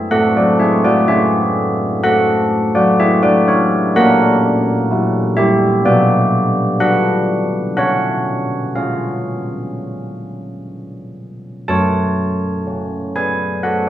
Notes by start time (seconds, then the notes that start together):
0.11 A3 A4 F#5
0.37 F#4 D5
0.60 G#4 E5
0.85 F#4 D5
1.08 C#4 G#4 E5
2.04 A4 F#5
2.75 F#4 D5
3.00 G#4 E5
3.23 F#4 D5
3.48 E4 C#5
3.96 A#3 A#4 F#5
4.91 E4 F#4
5.37 G4 E5
5.85 B3 F#4 D5
6.80 D4 F#4 B4 F#5
7.77 C#4 C#5 F#5
8.76 C#4 G#4 F5
11.68 F#3 C#5 A5
12.67 C#4
13.16 B4 G#5
13.63 A4 F#5